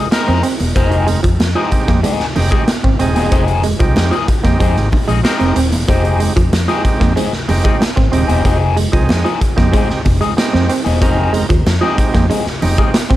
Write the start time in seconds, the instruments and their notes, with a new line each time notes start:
0.11 clean electric guitar F3 C4 D#4 A#4, tonewheel organ G#3 C4 D#4 A#4, muted clean electric guitar stroke, snare, closed hi-hat, high conga
0.28 fingered electric bass F2, clean electric guitar C4, closed hi-hat
0.43 clean electric guitar C4, muted clean electric guitar stroke, closed hi-hat
0.59 fingered electric bass E1, muted clean electric guitar stroke, closed hi-hat, high conga
0.75 fingered electric bass F1, clean electric guitar F3 C4 D#4 G#4, tonewheel organ G#3 C4 D#4 A#4, kick, closed hi-hat, muted conga
0.91 muted clean electric guitar stroke, closed hi-hat
1.07 clean electric guitar G#3, closed hi-hat, muted conga
1.23 fingered electric bass F2, clean electric guitar F3, muted clean electric guitar stroke, kick, closed hi-hat
1.39 fingered electric bass F2, muted clean electric guitar stroke, snare, closed hi-hat, high conga
1.55 clean electric guitar F3 C4 D#4 G#4, tonewheel organ G#3 C4 D#4 G4
1.72 muted clean electric guitar stroke, muted fingered electric bass stroke, kick, closed hi-hat
1.88 fingered electric bass F2, clean electric guitar A#3, muted clean electric guitar stroke, kick, snare, closed hi-hat
2.03 clean electric guitar F3 G#3 C4 D#4 G#4, closed hi-hat, muted conga, low conga
2.20 muted fingered electric bass stroke, snare
2.35 fingered electric bass F1, tonewheel organ G#3 C4 D#4 G4, muted clean electric guitar stroke, open hi-hat, muted conga, low conga
2.51 clean electric guitar F3 G#3 C4 D#4 G#4, kick, closed hi-hat
2.67 muted clean electric guitar stroke, snare, closed hi-hat, high conga
2.83 fingered electric bass G#1, clean electric guitar C4, muted clean electric guitar stroke, kick
2.99 fingered electric bass D#1, tonewheel organ G#3 C4 D#4 G#4, clean electric guitar C4, closed hi-hat
3.15 fingered electric bass E1, clean electric guitar F3 C4 D#4 G#4, closed hi-hat, high conga
3.31 fingered electric bass F1, clean electric guitar F3 C4 D#4 G#4, kick, closed hi-hat, muted conga
3.48 muted clean electric guitar stroke, closed hi-hat
3.63 clean electric guitar G#3, closed hi-hat, muted conga
3.79 fingered electric bass C2, clean electric guitar F3, tonewheel organ G#3 C4 D#4 G4, muted clean electric guitar stroke, kick, closed hi-hat
3.96 fingered electric bass F2, muted clean electric guitar stroke, snare, closed hi-hat, high conga
4.11 clean electric guitar F3 C4 D#4 G#4, closed hi-hat
4.28 muted clean electric guitar stroke, muted fingered electric bass stroke, kick, closed hi-hat
4.44 fingered electric bass F2, tonewheel organ G#3 C4 D#4 G4, clean electric guitar A#3, muted clean electric guitar stroke, kick, snare, closed hi-hat
4.60 fingered electric bass F2, clean electric guitar F3 G#3 C4 D#4 G#4, kick, closed hi-hat, muted conga
4.77 fingered electric bass G#1, snare, closed hi-hat
4.92 muted clean electric guitar stroke, kick, open hi-hat, muted conga, low conga
5.08 fingered electric bass A#1, clean electric guitar F3 G#3 C4 D#4 G#4, closed hi-hat
5.24 clean electric guitar F3 C4 D#4 A#4, tonewheel organ G#3 C4 D#4 G4, muted clean electric guitar stroke, snare, closed hi-hat, high conga
5.40 fingered electric bass F1, clean electric guitar C4, closed hi-hat
5.56 fingered electric bass D#1, clean electric guitar C4, muted clean electric guitar stroke, closed hi-hat
5.72 fingered electric bass E1, muted clean electric guitar stroke, closed hi-hat, high conga
5.88 fingered electric bass F1, clean electric guitar F3 C4 D#4 G#4, tonewheel organ G#3 C4 D#4 G4, kick, closed hi-hat, muted conga
6.04 muted clean electric guitar stroke, closed hi-hat
6.20 clean electric guitar G#3, closed hi-hat, muted conga
6.36 fingered electric bass F2, clean electric guitar F3, muted clean electric guitar stroke, kick, closed hi-hat
6.53 fingered electric bass F2, muted clean electric guitar stroke, snare, closed hi-hat, high conga
6.68 clean electric guitar F3 C4 D#4 G#4, tonewheel organ G#3 C4 D#4 G4, closed hi-hat
6.84 muted clean electric guitar stroke, muted fingered electric bass stroke, kick, closed hi-hat
7.00 fingered electric bass F2, clean electric guitar A#3, muted clean electric guitar stroke, kick, snare, closed hi-hat
7.16 clean electric guitar F3 G#3 C4 D#4 G#4, closed hi-hat, muted conga, low conga
7.33 muted fingered electric bass stroke, snare
7.48 fingered electric bass F1, tonewheel organ G#3 C4 D#4 G4, muted clean electric guitar stroke, open hi-hat, muted conga, low conga
7.64 clean electric guitar F3 G#3 C4 D#4 G#4, kick, closed hi-hat
7.81 muted clean electric guitar stroke, snare, closed hi-hat, high conga
7.96 fingered electric bass G#1, clean electric guitar C4, muted clean electric guitar stroke, kick, snare
8.12 fingered electric bass D#1, tonewheel organ G#3 C4 D#4 G4, clean electric guitar C4, closed hi-hat
8.28 fingered electric bass E1, clean electric guitar F3 C4 D#4 G#4, closed hi-hat, high conga
8.44 fingered electric bass F1, clean electric guitar F3 C4 D#4 G#4, kick, closed hi-hat, muted conga
8.61 muted clean electric guitar stroke
8.77 clean electric guitar G#3, closed hi-hat, muted conga
8.92 fingered electric bass C2, clean electric guitar F3, tonewheel organ G#3 C4 D#4 G#4, muted clean electric guitar stroke, kick, closed hi-hat
9.09 fingered electric bass F2, muted clean electric guitar stroke, snare, closed hi-hat, high conga
9.24 clean electric guitar F3 C4 D#4 G#4, closed hi-hat
9.41 muted clean electric guitar stroke, muted fingered electric bass stroke, kick, closed hi-hat
9.56 fingered electric bass F2, tonewheel organ G#3 C4 D#4 G4, clean electric guitar A#3, muted clean electric guitar stroke, kick, snare, closed hi-hat
9.72 clean electric guitar F3 G#3 C4 D#4 G#4, kick, closed hi-hat, muted conga
9.90 muted fingered electric bass stroke, snare
10.05 fingered electric bass F1, muted clean electric guitar stroke, kick, open hi-hat, muted conga
10.21 clean electric guitar F3 G#3 C4 D#4 G#4, closed hi-hat
10.37 tonewheel organ G#3 C4 D#4 G4, muted clean electric guitar stroke, snare, closed hi-hat, high conga
10.53 fingered electric bass F2, clean electric guitar C4, muted clean electric guitar stroke, snare
10.69 clean electric guitar C4, closed hi-hat
10.84 fingered electric bass E1, clean electric guitar F3 C4 D#4 G#4, closed hi-hat, high conga
11.01 fingered electric bass F1, clean electric guitar F3 C4 D#4 G#4, tonewheel organ G#3 C4 D#4 A#4, kick, closed hi-hat, muted conga
11.17 muted clean electric guitar stroke
11.33 clean electric guitar G#3, closed hi-hat, muted conga
11.49 fingered electric bass D#2, clean electric guitar F3, muted clean electric guitar stroke, kick, closed hi-hat
11.66 fingered electric bass F2, muted clean electric guitar stroke, snare, closed hi-hat, high conga
11.81 clean electric guitar F3 C4 D#4 G#4, tonewheel organ G#3 C4 D#4 G4
11.98 muted clean electric guitar stroke, muted fingered electric bass stroke, kick, closed hi-hat
12.14 fingered electric bass F2, clean electric guitar A#3, muted clean electric guitar stroke, kick, snare, closed hi-hat
12.30 clean electric guitar F3 G#3 C4 D#4 G#4, closed hi-hat, muted conga, low conga
12.46 muted fingered electric bass stroke, snare
12.62 fingered electric bass F1, tonewheel organ G#3 C4 D#4 G4, muted clean electric guitar stroke, open hi-hat, muted conga, low conga
12.78 clean electric guitar F3 G#3 C4 D#4 G#4, kick, closed hi-hat
12.94 muted clean electric guitar stroke, snare, closed hi-hat, high conga
13.10 fingered electric bass G#1, clean electric guitar C4, muted clean electric guitar stroke, kick, closed hi-hat